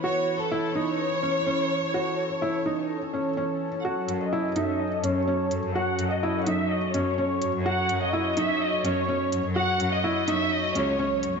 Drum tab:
HH |--------|--------|-x-x-x-x|-x-x-x-x|

HH |-x-x-x-x|-x-x-x-x|